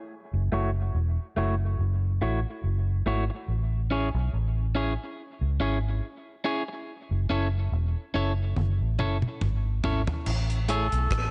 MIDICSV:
0, 0, Header, 1, 6, 480
1, 0, Start_track
1, 0, Key_signature, 3, "minor"
1, 0, Tempo, 847458
1, 53, Time_signature, 4, 2, 24, 8
1, 6404, End_track
2, 0, Start_track
2, 0, Title_t, "Melodica"
2, 0, Program_c, 0, 22
2, 6055, Note_on_c, 0, 69, 117
2, 6404, Note_off_c, 0, 69, 0
2, 6404, End_track
3, 0, Start_track
3, 0, Title_t, "Clean electric guitar"
3, 0, Program_c, 1, 27
3, 296, Note_on_c, 1, 57, 97
3, 299, Note_on_c, 1, 64, 92
3, 302, Note_on_c, 1, 66, 100
3, 304, Note_on_c, 1, 73, 105
3, 392, Note_off_c, 1, 57, 0
3, 394, Note_off_c, 1, 64, 0
3, 395, Note_off_c, 1, 66, 0
3, 396, Note_off_c, 1, 73, 0
3, 774, Note_on_c, 1, 57, 92
3, 778, Note_on_c, 1, 64, 90
3, 779, Note_on_c, 1, 66, 90
3, 782, Note_on_c, 1, 73, 91
3, 871, Note_off_c, 1, 57, 0
3, 873, Note_off_c, 1, 64, 0
3, 874, Note_off_c, 1, 66, 0
3, 875, Note_off_c, 1, 73, 0
3, 1255, Note_on_c, 1, 57, 67
3, 1258, Note_on_c, 1, 64, 76
3, 1260, Note_on_c, 1, 66, 72
3, 1263, Note_on_c, 1, 73, 80
3, 1351, Note_off_c, 1, 57, 0
3, 1352, Note_off_c, 1, 64, 0
3, 1353, Note_off_c, 1, 66, 0
3, 1355, Note_off_c, 1, 73, 0
3, 1734, Note_on_c, 1, 57, 78
3, 1738, Note_on_c, 1, 64, 89
3, 1740, Note_on_c, 1, 66, 86
3, 1742, Note_on_c, 1, 73, 86
3, 1831, Note_off_c, 1, 57, 0
3, 1832, Note_off_c, 1, 64, 0
3, 1833, Note_off_c, 1, 66, 0
3, 1835, Note_off_c, 1, 73, 0
3, 2213, Note_on_c, 1, 61, 95
3, 2217, Note_on_c, 1, 64, 86
3, 2219, Note_on_c, 1, 68, 98
3, 2221, Note_on_c, 1, 73, 108
3, 2310, Note_off_c, 1, 61, 0
3, 2312, Note_off_c, 1, 64, 0
3, 2313, Note_off_c, 1, 68, 0
3, 2314, Note_off_c, 1, 73, 0
3, 2691, Note_on_c, 1, 61, 88
3, 2695, Note_on_c, 1, 64, 84
3, 2697, Note_on_c, 1, 68, 92
3, 2699, Note_on_c, 1, 73, 90
3, 2788, Note_off_c, 1, 61, 0
3, 2791, Note_off_c, 1, 64, 0
3, 2792, Note_off_c, 1, 68, 0
3, 2793, Note_off_c, 1, 73, 0
3, 3172, Note_on_c, 1, 61, 66
3, 3175, Note_on_c, 1, 64, 78
3, 3177, Note_on_c, 1, 68, 68
3, 3180, Note_on_c, 1, 73, 83
3, 3269, Note_off_c, 1, 61, 0
3, 3271, Note_off_c, 1, 64, 0
3, 3272, Note_off_c, 1, 68, 0
3, 3273, Note_off_c, 1, 73, 0
3, 3650, Note_on_c, 1, 61, 87
3, 3653, Note_on_c, 1, 64, 86
3, 3655, Note_on_c, 1, 68, 99
3, 3658, Note_on_c, 1, 73, 89
3, 3748, Note_off_c, 1, 61, 0
3, 3750, Note_off_c, 1, 64, 0
3, 3751, Note_off_c, 1, 68, 0
3, 3752, Note_off_c, 1, 73, 0
3, 4133, Note_on_c, 1, 61, 89
3, 4135, Note_on_c, 1, 64, 96
3, 4138, Note_on_c, 1, 69, 95
3, 4140, Note_on_c, 1, 73, 96
3, 4230, Note_off_c, 1, 61, 0
3, 4231, Note_off_c, 1, 64, 0
3, 4232, Note_off_c, 1, 69, 0
3, 4233, Note_off_c, 1, 73, 0
3, 4612, Note_on_c, 1, 61, 82
3, 4615, Note_on_c, 1, 64, 75
3, 4618, Note_on_c, 1, 69, 91
3, 4620, Note_on_c, 1, 73, 93
3, 4709, Note_off_c, 1, 61, 0
3, 4711, Note_off_c, 1, 64, 0
3, 4712, Note_off_c, 1, 69, 0
3, 4713, Note_off_c, 1, 73, 0
3, 5092, Note_on_c, 1, 61, 70
3, 5095, Note_on_c, 1, 64, 71
3, 5097, Note_on_c, 1, 69, 74
3, 5098, Note_on_c, 1, 73, 70
3, 5189, Note_off_c, 1, 61, 0
3, 5191, Note_off_c, 1, 64, 0
3, 5192, Note_off_c, 1, 69, 0
3, 5192, Note_off_c, 1, 73, 0
3, 5572, Note_on_c, 1, 61, 79
3, 5574, Note_on_c, 1, 64, 83
3, 5577, Note_on_c, 1, 69, 82
3, 5579, Note_on_c, 1, 73, 82
3, 5670, Note_off_c, 1, 61, 0
3, 5671, Note_off_c, 1, 64, 0
3, 5672, Note_off_c, 1, 69, 0
3, 5673, Note_off_c, 1, 73, 0
3, 6053, Note_on_c, 1, 57, 90
3, 6055, Note_on_c, 1, 64, 87
3, 6058, Note_on_c, 1, 68, 91
3, 6061, Note_on_c, 1, 73, 91
3, 6150, Note_off_c, 1, 57, 0
3, 6151, Note_off_c, 1, 64, 0
3, 6153, Note_off_c, 1, 68, 0
3, 6154, Note_off_c, 1, 73, 0
3, 6404, End_track
4, 0, Start_track
4, 0, Title_t, "Fingered electric bass"
4, 0, Program_c, 2, 33
4, 189, Note_on_c, 2, 30, 90
4, 287, Note_off_c, 2, 30, 0
4, 297, Note_on_c, 2, 30, 81
4, 518, Note_off_c, 2, 30, 0
4, 536, Note_on_c, 2, 28, 86
4, 658, Note_off_c, 2, 28, 0
4, 775, Note_on_c, 2, 30, 91
4, 996, Note_off_c, 2, 30, 0
4, 1015, Note_on_c, 2, 30, 87
4, 1236, Note_off_c, 2, 30, 0
4, 1254, Note_on_c, 2, 33, 97
4, 1377, Note_off_c, 2, 33, 0
4, 1494, Note_on_c, 2, 30, 99
4, 1715, Note_off_c, 2, 30, 0
4, 1732, Note_on_c, 2, 32, 90
4, 1856, Note_off_c, 2, 32, 0
4, 1973, Note_on_c, 2, 33, 81
4, 2323, Note_off_c, 2, 33, 0
4, 2348, Note_on_c, 2, 35, 94
4, 2445, Note_off_c, 2, 35, 0
4, 2455, Note_on_c, 2, 33, 88
4, 2804, Note_off_c, 2, 33, 0
4, 3066, Note_on_c, 2, 37, 85
4, 3164, Note_off_c, 2, 37, 0
4, 3172, Note_on_c, 2, 32, 84
4, 3394, Note_off_c, 2, 32, 0
4, 4027, Note_on_c, 2, 30, 89
4, 4124, Note_off_c, 2, 30, 0
4, 4134, Note_on_c, 2, 30, 81
4, 4355, Note_off_c, 2, 30, 0
4, 4373, Note_on_c, 2, 28, 80
4, 4496, Note_off_c, 2, 28, 0
4, 4615, Note_on_c, 2, 30, 78
4, 4836, Note_off_c, 2, 30, 0
4, 4855, Note_on_c, 2, 30, 92
4, 4977, Note_off_c, 2, 30, 0
4, 4990, Note_on_c, 2, 33, 75
4, 5086, Note_off_c, 2, 33, 0
4, 5093, Note_on_c, 2, 30, 84
4, 5216, Note_off_c, 2, 30, 0
4, 5333, Note_on_c, 2, 32, 93
4, 5555, Note_off_c, 2, 32, 0
4, 5574, Note_on_c, 2, 32, 97
4, 5697, Note_off_c, 2, 32, 0
4, 5815, Note_on_c, 2, 33, 88
4, 6164, Note_off_c, 2, 33, 0
4, 6188, Note_on_c, 2, 35, 81
4, 6285, Note_off_c, 2, 35, 0
4, 6293, Note_on_c, 2, 33, 84
4, 6404, Note_off_c, 2, 33, 0
4, 6404, End_track
5, 0, Start_track
5, 0, Title_t, "Muted clean electric guitar strokes"
5, 1869, Note_on_c, 9, 29, 50
5, 1926, Note_off_c, 9, 29, 0
5, 3786, Note_on_c, 9, 29, 47
5, 3843, Note_off_c, 9, 29, 0
5, 5706, Note_on_c, 9, 29, 42
5, 5762, Note_off_c, 9, 29, 0
5, 6404, End_track
6, 0, Start_track
6, 0, Title_t, "Drums"
6, 4851, Note_on_c, 9, 48, 53
6, 4908, Note_off_c, 9, 48, 0
6, 5091, Note_on_c, 9, 47, 71
6, 5148, Note_off_c, 9, 47, 0
6, 5224, Note_on_c, 9, 47, 64
6, 5280, Note_off_c, 9, 47, 0
6, 5332, Note_on_c, 9, 45, 83
6, 5389, Note_off_c, 9, 45, 0
6, 5572, Note_on_c, 9, 43, 95
6, 5628, Note_off_c, 9, 43, 0
6, 5706, Note_on_c, 9, 43, 91
6, 5763, Note_off_c, 9, 43, 0
6, 5812, Note_on_c, 9, 49, 99
6, 5868, Note_off_c, 9, 49, 0
6, 5947, Note_on_c, 9, 42, 49
6, 6003, Note_off_c, 9, 42, 0
6, 6052, Note_on_c, 9, 42, 62
6, 6109, Note_off_c, 9, 42, 0
6, 6186, Note_on_c, 9, 42, 47
6, 6242, Note_off_c, 9, 42, 0
6, 6291, Note_on_c, 9, 42, 68
6, 6292, Note_on_c, 9, 36, 102
6, 6298, Note_on_c, 9, 37, 126
6, 6347, Note_off_c, 9, 42, 0
6, 6349, Note_off_c, 9, 36, 0
6, 6355, Note_off_c, 9, 37, 0
6, 6404, End_track
0, 0, End_of_file